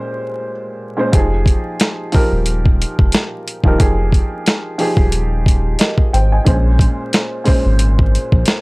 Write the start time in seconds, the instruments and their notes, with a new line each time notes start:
Already playing: upright piano A#2 G#3 C#4 G4 C5
0.97 upright piano A#2 G#3 C#4 C5
1.12 sub bass F1, upright piano F3 D#4 G4 G#4, kick, closed hi-hat
1.46 kick, closed hi-hat
1.80 snare, closed hi-hat
2.12 upright piano F3 D#4 G4 A#4, kick, open hi-hat
2.32 sub bass D#1
2.46 closed hi-hat
2.66 kick
2.82 closed hi-hat
2.99 sub bass F1, kick
3.12 snare, closed hi-hat
3.48 closed hi-hat
3.64 sub bass D#1, upright piano F3 D#4 G4 A#4, kick
3.78 sub bass F1, upright piano F3 D#4 G4 G#4, kick, closed hi-hat
4.12 kick, closed hi-hat
4.46 snare, closed hi-hat
4.78 upright piano F3 D#4 G4 G#4, open hi-hat
4.97 sub bass D#1, kick
5.12 closed hi-hat
5.46 kick, closed hi-hat
5.79 upright piano A#4 D#5, snare, closed hi-hat
5.98 kick
6.13 sub bass G#1, upright piano C5 G5, closed hi-hat
6.32 upright piano D#5 G#5
6.45 sub bass A#1, upright piano A#2 G#3 C#4 C5, kick, closed hi-hat
6.79 kick, closed hi-hat
7.13 snare, closed hi-hat
7.44 upright piano A#2 G#3 C#4 C5, kick, open hi-hat
7.65 sub bass G#1
7.79 closed hi-hat
7.99 kick
8.15 closed hi-hat
8.32 sub bass A#1, kick
8.46 snare, closed hi-hat